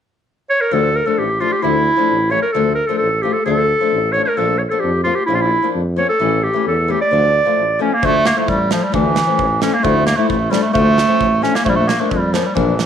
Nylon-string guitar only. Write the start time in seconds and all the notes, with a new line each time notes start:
0.71 F3 A3 D4
1.06 F3 A3 D4
1.40 F3 A3 D4
1.62 F3 A3 E4
1.97 F3 A3 D4
2.30 F3 A3 C#4
2.55 F3 A3 D4
2.89 F3 A3 D4
3.23 F3 A3 F4
3.46 F3 A3 D4
3.81 F3 A3 D4
4.14 F3 A3 D4
4.37 F3 A#3 D4
4.71 F3 A#3 D4
5.05 F3 A#3 F4
5.28 F3 A#3 C#4
5.63 F3 A#3 D4
5.96 F3 A#3 C#4
6.20 E3 A3 C#4
6.54 E3 A3 C#4
6.88 E3 A3 C#4
7.11 F3 A3 D4
7.45 F3 A3 F4
7.79 F3 A3 C#4
8.02 F3 A3 D4
8.36 F3 A3 E4
8.70 F3 A3 F4
8.92 F3 A3 D4
9.27 F3 A3 C#4
9.61 F3 A3 D4
9.83 F3 A3 E4
10.17 F3 A3 E4
10.50 F3 A3 D4
10.73 F3 A3 F4
11.07 F3 A3 C#4
11.42 F3 A3 D4
11.64 F3 A#3 D4
11.99 F3 A#3 D4
12.33 F3 A#3 C#4
12.55 F3 A#3 D4